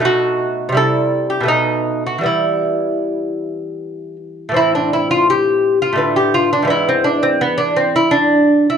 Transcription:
0, 0, Header, 1, 2, 480
1, 0, Start_track
1, 0, Key_signature, 1, "minor"
1, 0, Tempo, 724638
1, 30, Time_signature, 3, 2, 24, 8
1, 991, Tempo, 770218
1, 2910, Key_signature, 0, "minor"
1, 2911, Tempo, 710900
1, 4831, Tempo, 734394
1, 5717, End_track
2, 0, Start_track
2, 0, Title_t, "Lute"
2, 0, Program_c, 0, 24
2, 0, Note_on_c, 0, 47, 53
2, 1, Note_on_c, 0, 57, 39
2, 8, Note_on_c, 0, 63, 41
2, 33, Note_on_c, 0, 66, 79
2, 456, Note_on_c, 0, 48, 48
2, 466, Note_off_c, 0, 47, 0
2, 474, Note_off_c, 0, 57, 0
2, 478, Note_off_c, 0, 63, 0
2, 479, Note_on_c, 0, 55, 43
2, 486, Note_off_c, 0, 66, 0
2, 494, Note_on_c, 0, 64, 38
2, 510, Note_on_c, 0, 69, 78
2, 857, Note_off_c, 0, 69, 0
2, 860, Note_on_c, 0, 67, 55
2, 931, Note_on_c, 0, 47, 48
2, 947, Note_off_c, 0, 55, 0
2, 949, Note_on_c, 0, 57, 43
2, 951, Note_off_c, 0, 48, 0
2, 965, Note_on_c, 0, 59, 39
2, 970, Note_off_c, 0, 64, 0
2, 982, Note_on_c, 0, 63, 71
2, 986, Note_off_c, 0, 67, 0
2, 1325, Note_off_c, 0, 63, 0
2, 1346, Note_on_c, 0, 66, 57
2, 1419, Note_on_c, 0, 52, 43
2, 1423, Note_off_c, 0, 47, 0
2, 1432, Note_off_c, 0, 57, 0
2, 1436, Note_on_c, 0, 55, 36
2, 1439, Note_off_c, 0, 59, 0
2, 1451, Note_on_c, 0, 59, 34
2, 1463, Note_off_c, 0, 66, 0
2, 1466, Note_on_c, 0, 64, 58
2, 2651, Note_off_c, 0, 64, 0
2, 2856, Note_on_c, 0, 45, 42
2, 2863, Note_off_c, 0, 52, 0
2, 2871, Note_off_c, 0, 55, 0
2, 2873, Note_on_c, 0, 52, 39
2, 2879, Note_off_c, 0, 59, 0
2, 2888, Note_on_c, 0, 60, 36
2, 2903, Note_on_c, 0, 64, 67
2, 3025, Note_off_c, 0, 64, 0
2, 3028, Note_on_c, 0, 62, 58
2, 3149, Note_off_c, 0, 62, 0
2, 3151, Note_on_c, 0, 64, 60
2, 3267, Note_off_c, 0, 64, 0
2, 3269, Note_on_c, 0, 65, 70
2, 3394, Note_off_c, 0, 65, 0
2, 3399, Note_on_c, 0, 67, 80
2, 3743, Note_off_c, 0, 67, 0
2, 3750, Note_on_c, 0, 65, 59
2, 3814, Note_off_c, 0, 45, 0
2, 3822, Note_on_c, 0, 45, 50
2, 3828, Note_off_c, 0, 52, 0
2, 3836, Note_off_c, 0, 60, 0
2, 3842, Note_on_c, 0, 50, 41
2, 3855, Note_on_c, 0, 59, 40
2, 3981, Note_off_c, 0, 65, 0
2, 3981, Note_on_c, 0, 67, 58
2, 4103, Note_on_c, 0, 65, 67
2, 4107, Note_off_c, 0, 67, 0
2, 4225, Note_off_c, 0, 65, 0
2, 4227, Note_on_c, 0, 62, 69
2, 4291, Note_off_c, 0, 45, 0
2, 4294, Note_on_c, 0, 44, 49
2, 4305, Note_off_c, 0, 50, 0
2, 4308, Note_on_c, 0, 52, 44
2, 4319, Note_off_c, 0, 59, 0
2, 4327, Note_on_c, 0, 59, 41
2, 4343, Note_off_c, 0, 62, 0
2, 4346, Note_on_c, 0, 64, 74
2, 4469, Note_off_c, 0, 64, 0
2, 4470, Note_on_c, 0, 60, 64
2, 4576, Note_on_c, 0, 62, 67
2, 4591, Note_off_c, 0, 60, 0
2, 4701, Note_on_c, 0, 60, 65
2, 4703, Note_off_c, 0, 62, 0
2, 4817, Note_off_c, 0, 59, 0
2, 4825, Note_on_c, 0, 59, 70
2, 4826, Note_off_c, 0, 60, 0
2, 4933, Note_on_c, 0, 62, 67
2, 4945, Note_off_c, 0, 59, 0
2, 5056, Note_on_c, 0, 60, 61
2, 5057, Note_off_c, 0, 62, 0
2, 5178, Note_off_c, 0, 60, 0
2, 5182, Note_on_c, 0, 64, 67
2, 5282, Note_on_c, 0, 62, 76
2, 5301, Note_off_c, 0, 64, 0
2, 5646, Note_off_c, 0, 62, 0
2, 5666, Note_on_c, 0, 64, 67
2, 5717, Note_off_c, 0, 44, 0
2, 5717, Note_off_c, 0, 52, 0
2, 5717, Note_off_c, 0, 64, 0
2, 5717, End_track
0, 0, End_of_file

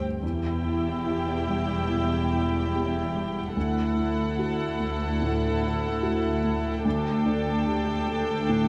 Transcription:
0, 0, Header, 1, 7, 480
1, 0, Start_track
1, 0, Tempo, 840336
1, 130, Time_signature, 4, 2, 24, 8
1, 1089, Tempo, 824176
1, 5034, End_track
2, 0, Start_track
2, 0, Title_t, "Violin section"
2, 0, Program_c, 0, 48
2, 128, Note_on_c, 0, 79, 45
2, 2026, Note_off_c, 0, 79, 0
2, 2051, Note_on_c, 0, 78, 52
2, 3945, Note_off_c, 0, 78, 0
2, 3970, Note_on_c, 0, 79, 53
2, 5034, Note_off_c, 0, 79, 0
2, 5034, End_track
3, 0, Start_track
3, 0, Title_t, "Violin section"
3, 0, Program_c, 1, 48
3, 129, Note_on_c, 1, 67, 47
3, 2026, Note_off_c, 1, 67, 0
3, 2051, Note_on_c, 1, 69, 49
3, 3964, Note_off_c, 1, 69, 0
3, 3971, Note_on_c, 1, 69, 68
3, 5034, Note_off_c, 1, 69, 0
3, 5034, End_track
4, 0, Start_track
4, 0, Title_t, "Viola section"
4, 0, Program_c, 2, 48
4, 127, Note_on_c, 2, 64, 52
4, 2025, Note_off_c, 2, 64, 0
4, 2054, Note_on_c, 2, 64, 54
4, 3946, Note_off_c, 2, 64, 0
4, 3963, Note_on_c, 2, 62, 66
4, 5034, Note_off_c, 2, 62, 0
4, 5034, End_track
5, 0, Start_track
5, 0, Title_t, "Felt piano"
5, 0, Program_c, 3, 0
5, 0, Control_c, 3, 64, 127
5, 0, Note_on_c, 3, 43, 37
5, 0, Note_on_c, 3, 55, 31
5, 0, Note_on_c, 3, 62, 41
5, 0, Note_on_c, 3, 67, 36
5, 129, Note_off_c, 3, 55, 0
5, 131, Note_on_c, 3, 40, 50
5, 139, Control_c, 3, 64, 0
5, 141, Note_off_c, 3, 43, 0
5, 141, Note_off_c, 3, 62, 0
5, 141, Note_off_c, 3, 67, 0
5, 231, Control_c, 3, 64, 127
5, 371, Note_on_c, 3, 64, 40
5, 609, Note_on_c, 3, 67, 38
5, 755, Note_off_c, 3, 64, 0
5, 849, Note_on_c, 3, 55, 34
5, 993, Note_off_c, 3, 67, 0
5, 1067, Note_off_c, 3, 40, 0
5, 1087, Note_on_c, 3, 47, 38
5, 1234, Note_off_c, 3, 55, 0
5, 1331, Note_on_c, 3, 64, 42
5, 1474, Note_off_c, 3, 47, 0
5, 1573, Note_on_c, 3, 67, 45
5, 1714, Note_off_c, 3, 64, 0
5, 1813, Note_on_c, 3, 55, 35
5, 1955, Note_off_c, 3, 67, 0
5, 2051, Note_off_c, 3, 55, 0
5, 2055, Note_on_c, 3, 38, 53
5, 2059, Control_c, 3, 64, 0
5, 2167, Control_c, 3, 64, 127
5, 2295, Note_on_c, 3, 64, 45
5, 2535, Note_on_c, 3, 66, 50
5, 2676, Note_off_c, 3, 64, 0
5, 2771, Note_on_c, 3, 57, 45
5, 2918, Note_off_c, 3, 66, 0
5, 2991, Note_off_c, 3, 38, 0
5, 3018, Note_on_c, 3, 45, 47
5, 3157, Note_off_c, 3, 57, 0
5, 3257, Note_on_c, 3, 64, 55
5, 3399, Note_off_c, 3, 45, 0
5, 3489, Note_on_c, 3, 66, 51
5, 3637, Note_off_c, 3, 64, 0
5, 3727, Note_on_c, 3, 57, 50
5, 3872, Note_off_c, 3, 66, 0
5, 3966, Note_off_c, 3, 57, 0
5, 3969, Note_on_c, 3, 38, 60
5, 3978, Control_c, 3, 64, 0
5, 4074, Control_c, 3, 64, 127
5, 4202, Note_on_c, 3, 62, 51
5, 4442, Note_on_c, 3, 67, 46
5, 4588, Note_off_c, 3, 62, 0
5, 4684, Note_on_c, 3, 57, 39
5, 4829, Note_off_c, 3, 67, 0
5, 4905, Note_off_c, 3, 38, 0
5, 4924, Note_on_c, 3, 45, 44
5, 5034, Note_off_c, 3, 45, 0
5, 5034, Note_off_c, 3, 57, 0
5, 5034, End_track
6, 0, Start_track
6, 0, Title_t, "Cello section"
6, 0, Program_c, 4, 48
6, 136, Note_on_c, 4, 40, 57
6, 2030, Note_off_c, 4, 40, 0
6, 2055, Note_on_c, 4, 38, 57
6, 3965, Note_off_c, 4, 38, 0
6, 3972, Note_on_c, 4, 38, 66
6, 5034, Note_off_c, 4, 38, 0
6, 5034, End_track
7, 0, Start_track
7, 0, Title_t, "Double bass section"
7, 0, Program_c, 5, 48
7, 136, Note_on_c, 5, 28, 41
7, 2030, Note_off_c, 5, 28, 0
7, 2047, Note_on_c, 5, 38, 49
7, 3965, Note_off_c, 5, 38, 0
7, 3972, Note_on_c, 5, 38, 52
7, 5034, Note_off_c, 5, 38, 0
7, 5034, End_track
0, 0, End_of_file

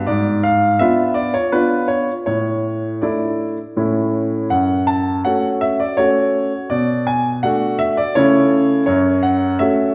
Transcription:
0, 0, Header, 1, 2, 480
1, 0, Start_track
1, 0, Tempo, 722892
1, 56, Time_signature, 3, 2, 24, 8
1, 1016, Tempo, 743494
1, 3416, Tempo, 722892
1, 6536, End_track
2, 0, Start_track
2, 0, Title_t, "Grand piano"
2, 0, Program_c, 0, 0
2, 44, Note_on_c, 0, 74, 75
2, 53, Note_on_c, 0, 44, 57
2, 264, Note_off_c, 0, 74, 0
2, 288, Note_on_c, 0, 77, 82
2, 518, Note_off_c, 0, 44, 0
2, 527, Note_on_c, 0, 76, 79
2, 531, Note_off_c, 0, 77, 0
2, 536, Note_on_c, 0, 59, 44
2, 539, Note_on_c, 0, 62, 42
2, 540, Note_on_c, 0, 65, 48
2, 759, Note_on_c, 0, 74, 70
2, 770, Note_off_c, 0, 76, 0
2, 883, Note_off_c, 0, 59, 0
2, 885, Note_off_c, 0, 62, 0
2, 885, Note_off_c, 0, 65, 0
2, 887, Note_off_c, 0, 74, 0
2, 889, Note_on_c, 0, 73, 68
2, 1011, Note_on_c, 0, 71, 65
2, 1013, Note_off_c, 0, 73, 0
2, 1014, Note_on_c, 0, 59, 42
2, 1019, Note_on_c, 0, 62, 40
2, 1022, Note_on_c, 0, 65, 47
2, 1229, Note_off_c, 0, 71, 0
2, 1241, Note_on_c, 0, 73, 60
2, 1362, Note_off_c, 0, 59, 0
2, 1365, Note_off_c, 0, 62, 0
2, 1367, Note_off_c, 0, 65, 0
2, 1391, Note_off_c, 0, 73, 0
2, 1488, Note_on_c, 0, 73, 60
2, 1494, Note_on_c, 0, 45, 42
2, 1965, Note_off_c, 0, 45, 0
2, 1975, Note_on_c, 0, 74, 44
2, 1977, Note_off_c, 0, 73, 0
2, 1980, Note_on_c, 0, 57, 33
2, 1983, Note_on_c, 0, 62, 34
2, 1984, Note_on_c, 0, 64, 38
2, 2266, Note_off_c, 0, 74, 0
2, 2328, Note_off_c, 0, 57, 0
2, 2330, Note_off_c, 0, 62, 0
2, 2330, Note_off_c, 0, 64, 0
2, 2459, Note_on_c, 0, 57, 32
2, 2460, Note_on_c, 0, 45, 45
2, 2463, Note_on_c, 0, 61, 31
2, 2464, Note_on_c, 0, 64, 32
2, 2917, Note_off_c, 0, 57, 0
2, 2919, Note_off_c, 0, 61, 0
2, 2919, Note_off_c, 0, 64, 0
2, 2929, Note_off_c, 0, 45, 0
2, 2935, Note_on_c, 0, 78, 63
2, 2940, Note_on_c, 0, 42, 44
2, 3153, Note_off_c, 0, 78, 0
2, 3172, Note_on_c, 0, 81, 68
2, 3388, Note_off_c, 0, 81, 0
2, 3401, Note_off_c, 0, 42, 0
2, 3415, Note_on_c, 0, 78, 66
2, 3420, Note_on_c, 0, 57, 38
2, 3423, Note_on_c, 0, 61, 38
2, 3426, Note_on_c, 0, 66, 42
2, 3560, Note_off_c, 0, 78, 0
2, 3657, Note_on_c, 0, 76, 68
2, 3767, Note_off_c, 0, 57, 0
2, 3769, Note_off_c, 0, 61, 0
2, 3771, Note_off_c, 0, 66, 0
2, 3779, Note_off_c, 0, 76, 0
2, 3781, Note_on_c, 0, 74, 63
2, 3896, Note_on_c, 0, 73, 70
2, 3901, Note_off_c, 0, 74, 0
2, 3902, Note_on_c, 0, 57, 43
2, 3908, Note_on_c, 0, 61, 41
2, 3910, Note_on_c, 0, 66, 44
2, 4249, Note_off_c, 0, 57, 0
2, 4253, Note_off_c, 0, 61, 0
2, 4254, Note_off_c, 0, 66, 0
2, 4379, Note_on_c, 0, 74, 70
2, 4381, Note_off_c, 0, 73, 0
2, 4386, Note_on_c, 0, 47, 53
2, 4623, Note_off_c, 0, 74, 0
2, 4624, Note_on_c, 0, 80, 79
2, 4768, Note_off_c, 0, 80, 0
2, 4852, Note_off_c, 0, 47, 0
2, 4864, Note_on_c, 0, 78, 75
2, 4870, Note_on_c, 0, 57, 44
2, 4875, Note_on_c, 0, 62, 48
2, 4876, Note_on_c, 0, 66, 52
2, 5102, Note_on_c, 0, 76, 84
2, 5103, Note_off_c, 0, 78, 0
2, 5211, Note_off_c, 0, 57, 0
2, 5215, Note_off_c, 0, 62, 0
2, 5215, Note_off_c, 0, 66, 0
2, 5222, Note_off_c, 0, 76, 0
2, 5226, Note_on_c, 0, 74, 76
2, 5344, Note_off_c, 0, 74, 0
2, 5345, Note_on_c, 0, 73, 84
2, 5352, Note_on_c, 0, 57, 47
2, 5354, Note_on_c, 0, 49, 62
2, 5356, Note_on_c, 0, 64, 46
2, 5361, Note_on_c, 0, 69, 45
2, 5793, Note_off_c, 0, 73, 0
2, 5797, Note_off_c, 0, 57, 0
2, 5799, Note_off_c, 0, 64, 0
2, 5801, Note_off_c, 0, 69, 0
2, 5810, Note_off_c, 0, 49, 0
2, 5815, Note_on_c, 0, 73, 68
2, 5823, Note_on_c, 0, 42, 58
2, 6056, Note_off_c, 0, 73, 0
2, 6058, Note_on_c, 0, 78, 74
2, 6274, Note_off_c, 0, 78, 0
2, 6285, Note_off_c, 0, 42, 0
2, 6300, Note_on_c, 0, 76, 73
2, 6306, Note_on_c, 0, 57, 41
2, 6311, Note_on_c, 0, 61, 45
2, 6313, Note_on_c, 0, 66, 47
2, 6515, Note_off_c, 0, 76, 0
2, 6536, Note_off_c, 0, 57, 0
2, 6536, Note_off_c, 0, 61, 0
2, 6536, Note_off_c, 0, 66, 0
2, 6536, End_track
0, 0, End_of_file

